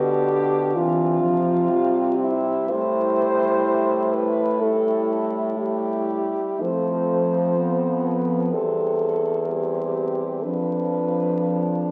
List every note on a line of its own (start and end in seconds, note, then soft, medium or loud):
0.00 0.71 B2 medium
0.00 0.76 D3 medium
0.00 1.39 D4 medium
0.00 0.77 G4 loud
0.74 2.67 C3 medium
0.74 1.20 E3 medium
0.74 2.19 F4 loud
1.21 1.71 F3 medium
1.69 2.69 G3 medium
1.69 2.67 C4 medium
2.20 2.72 E4 medium
2.70 6.44 A2 medium
2.70 4.45 G3 medium
2.70 4.58 E4 medium
2.70 4.15 C5 loud
4.14 4.63 B4 medium
4.61 5.56 G3 medium
4.61 5.56 E4 medium
4.61 5.30 A4 medium
5.58 6.59 G3 medium
5.58 6.62 E4 medium
5.58 6.64 G4 medium
6.61 8.54 F2 medium
6.61 8.55 F3 medium
6.61 7.56 A3 medium
6.61 8.07 C5 medium
7.57 8.52 B3 medium
8.05 8.56 B4 medium
8.51 10.43 E2 medium
8.51 9.21 G3 soft
8.51 9.20 C4 medium
8.51 9.48 A4 medium
9.46 10.40 G3 soft
9.46 10.39 C4 soft
9.46 10.45 G4 medium
10.43 11.91 F2 soft
10.43 11.91 F3 soft
10.43 11.91 D4 soft
10.43 11.91 B4 medium